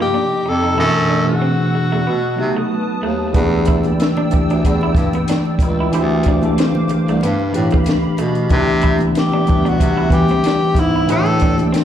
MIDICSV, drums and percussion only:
0, 0, Header, 1, 2, 480
1, 0, Start_track
1, 0, Tempo, 645161
1, 573, Time_signature, 4, 2, 24, 8
1, 8809, End_track
2, 0, Start_track
2, 0, Title_t, "Drums"
2, 2488, Note_on_c, 9, 42, 71
2, 2488, Note_on_c, 9, 62, 32
2, 2488, Note_on_c, 9, 64, 61
2, 2489, Note_on_c, 9, 36, 112
2, 2562, Note_off_c, 9, 42, 0
2, 2563, Note_off_c, 9, 36, 0
2, 2563, Note_off_c, 9, 62, 0
2, 2563, Note_off_c, 9, 64, 0
2, 2719, Note_on_c, 9, 42, 63
2, 2740, Note_on_c, 9, 36, 91
2, 2793, Note_off_c, 9, 42, 0
2, 2814, Note_off_c, 9, 36, 0
2, 2853, Note_on_c, 9, 63, 67
2, 2860, Note_on_c, 9, 42, 34
2, 2927, Note_off_c, 9, 63, 0
2, 2934, Note_off_c, 9, 42, 0
2, 2973, Note_on_c, 9, 62, 27
2, 2974, Note_on_c, 9, 42, 85
2, 2991, Note_on_c, 9, 38, 116
2, 3048, Note_off_c, 9, 62, 0
2, 3049, Note_off_c, 9, 42, 0
2, 3065, Note_off_c, 9, 38, 0
2, 3100, Note_on_c, 9, 62, 31
2, 3100, Note_on_c, 9, 63, 66
2, 3175, Note_off_c, 9, 62, 0
2, 3175, Note_off_c, 9, 63, 0
2, 3201, Note_on_c, 9, 64, 52
2, 3207, Note_on_c, 9, 42, 57
2, 3226, Note_on_c, 9, 36, 84
2, 3275, Note_off_c, 9, 64, 0
2, 3281, Note_off_c, 9, 42, 0
2, 3300, Note_off_c, 9, 36, 0
2, 3349, Note_on_c, 9, 42, 33
2, 3423, Note_off_c, 9, 42, 0
2, 3456, Note_on_c, 9, 36, 72
2, 3458, Note_on_c, 9, 42, 80
2, 3531, Note_off_c, 9, 36, 0
2, 3532, Note_off_c, 9, 42, 0
2, 3580, Note_on_c, 9, 62, 29
2, 3654, Note_off_c, 9, 62, 0
2, 3680, Note_on_c, 9, 36, 99
2, 3693, Note_on_c, 9, 42, 56
2, 3754, Note_off_c, 9, 36, 0
2, 3767, Note_off_c, 9, 42, 0
2, 3819, Note_on_c, 9, 42, 31
2, 3820, Note_on_c, 9, 63, 64
2, 3893, Note_off_c, 9, 42, 0
2, 3894, Note_off_c, 9, 63, 0
2, 3927, Note_on_c, 9, 42, 91
2, 3950, Note_on_c, 9, 38, 99
2, 4001, Note_off_c, 9, 42, 0
2, 4025, Note_off_c, 9, 38, 0
2, 4058, Note_on_c, 9, 62, 26
2, 4132, Note_off_c, 9, 62, 0
2, 4157, Note_on_c, 9, 36, 86
2, 4165, Note_on_c, 9, 42, 66
2, 4232, Note_off_c, 9, 36, 0
2, 4240, Note_off_c, 9, 42, 0
2, 4408, Note_on_c, 9, 64, 63
2, 4411, Note_on_c, 9, 42, 77
2, 4482, Note_off_c, 9, 64, 0
2, 4485, Note_off_c, 9, 42, 0
2, 4542, Note_on_c, 9, 62, 33
2, 4616, Note_off_c, 9, 62, 0
2, 4638, Note_on_c, 9, 42, 71
2, 4659, Note_on_c, 9, 36, 80
2, 4712, Note_off_c, 9, 42, 0
2, 4733, Note_off_c, 9, 36, 0
2, 4773, Note_on_c, 9, 63, 63
2, 4782, Note_on_c, 9, 42, 33
2, 4848, Note_off_c, 9, 63, 0
2, 4857, Note_off_c, 9, 42, 0
2, 4896, Note_on_c, 9, 42, 88
2, 4898, Note_on_c, 9, 62, 26
2, 4912, Note_on_c, 9, 38, 107
2, 4970, Note_off_c, 9, 42, 0
2, 4972, Note_off_c, 9, 62, 0
2, 4986, Note_off_c, 9, 38, 0
2, 5021, Note_on_c, 9, 62, 29
2, 5021, Note_on_c, 9, 63, 67
2, 5096, Note_off_c, 9, 62, 0
2, 5096, Note_off_c, 9, 63, 0
2, 5120, Note_on_c, 9, 64, 59
2, 5128, Note_on_c, 9, 42, 58
2, 5195, Note_off_c, 9, 64, 0
2, 5203, Note_off_c, 9, 42, 0
2, 5270, Note_on_c, 9, 42, 35
2, 5344, Note_off_c, 9, 42, 0
2, 5363, Note_on_c, 9, 62, 26
2, 5382, Note_on_c, 9, 42, 85
2, 5438, Note_off_c, 9, 62, 0
2, 5456, Note_off_c, 9, 42, 0
2, 5501, Note_on_c, 9, 62, 28
2, 5575, Note_off_c, 9, 62, 0
2, 5612, Note_on_c, 9, 42, 64
2, 5686, Note_off_c, 9, 42, 0
2, 5733, Note_on_c, 9, 42, 33
2, 5733, Note_on_c, 9, 63, 66
2, 5758, Note_on_c, 9, 36, 84
2, 5807, Note_off_c, 9, 42, 0
2, 5808, Note_off_c, 9, 63, 0
2, 5832, Note_off_c, 9, 36, 0
2, 5836, Note_on_c, 9, 62, 31
2, 5848, Note_on_c, 9, 42, 90
2, 5871, Note_on_c, 9, 38, 103
2, 5910, Note_off_c, 9, 62, 0
2, 5922, Note_off_c, 9, 42, 0
2, 5946, Note_off_c, 9, 38, 0
2, 6086, Note_on_c, 9, 42, 66
2, 6161, Note_off_c, 9, 42, 0
2, 6214, Note_on_c, 9, 42, 39
2, 6288, Note_off_c, 9, 42, 0
2, 6321, Note_on_c, 9, 62, 30
2, 6321, Note_on_c, 9, 64, 60
2, 6327, Note_on_c, 9, 42, 73
2, 6328, Note_on_c, 9, 36, 106
2, 6395, Note_off_c, 9, 62, 0
2, 6395, Note_off_c, 9, 64, 0
2, 6401, Note_off_c, 9, 42, 0
2, 6402, Note_off_c, 9, 36, 0
2, 6557, Note_on_c, 9, 42, 65
2, 6578, Note_on_c, 9, 36, 86
2, 6632, Note_off_c, 9, 42, 0
2, 6652, Note_off_c, 9, 36, 0
2, 6685, Note_on_c, 9, 63, 70
2, 6698, Note_on_c, 9, 42, 34
2, 6759, Note_off_c, 9, 63, 0
2, 6773, Note_off_c, 9, 42, 0
2, 6810, Note_on_c, 9, 42, 84
2, 6826, Note_on_c, 9, 38, 106
2, 6884, Note_off_c, 9, 42, 0
2, 6900, Note_off_c, 9, 38, 0
2, 6937, Note_on_c, 9, 63, 68
2, 7011, Note_off_c, 9, 63, 0
2, 7035, Note_on_c, 9, 64, 49
2, 7045, Note_on_c, 9, 42, 57
2, 7064, Note_on_c, 9, 36, 97
2, 7109, Note_off_c, 9, 64, 0
2, 7119, Note_off_c, 9, 42, 0
2, 7139, Note_off_c, 9, 36, 0
2, 7187, Note_on_c, 9, 42, 31
2, 7262, Note_off_c, 9, 42, 0
2, 7278, Note_on_c, 9, 62, 26
2, 7294, Note_on_c, 9, 36, 79
2, 7297, Note_on_c, 9, 42, 87
2, 7352, Note_off_c, 9, 62, 0
2, 7368, Note_off_c, 9, 36, 0
2, 7371, Note_off_c, 9, 42, 0
2, 7517, Note_on_c, 9, 36, 97
2, 7528, Note_on_c, 9, 42, 54
2, 7592, Note_off_c, 9, 36, 0
2, 7602, Note_off_c, 9, 42, 0
2, 7652, Note_on_c, 9, 63, 70
2, 7653, Note_on_c, 9, 42, 34
2, 7726, Note_off_c, 9, 63, 0
2, 7728, Note_off_c, 9, 42, 0
2, 7766, Note_on_c, 9, 42, 86
2, 7789, Note_on_c, 9, 38, 105
2, 7840, Note_off_c, 9, 42, 0
2, 7864, Note_off_c, 9, 38, 0
2, 7997, Note_on_c, 9, 36, 85
2, 8006, Note_on_c, 9, 42, 67
2, 8071, Note_off_c, 9, 36, 0
2, 8081, Note_off_c, 9, 42, 0
2, 8245, Note_on_c, 9, 64, 62
2, 8249, Note_on_c, 9, 42, 82
2, 8319, Note_off_c, 9, 64, 0
2, 8323, Note_off_c, 9, 42, 0
2, 8379, Note_on_c, 9, 62, 33
2, 8453, Note_off_c, 9, 62, 0
2, 8479, Note_on_c, 9, 42, 74
2, 8498, Note_on_c, 9, 36, 90
2, 8553, Note_off_c, 9, 42, 0
2, 8573, Note_off_c, 9, 36, 0
2, 8616, Note_on_c, 9, 63, 75
2, 8624, Note_on_c, 9, 42, 36
2, 8691, Note_off_c, 9, 63, 0
2, 8699, Note_off_c, 9, 42, 0
2, 8734, Note_on_c, 9, 42, 93
2, 8740, Note_on_c, 9, 62, 30
2, 8750, Note_on_c, 9, 38, 116
2, 8808, Note_off_c, 9, 42, 0
2, 8809, Note_off_c, 9, 38, 0
2, 8809, Note_off_c, 9, 62, 0
2, 8809, End_track
0, 0, End_of_file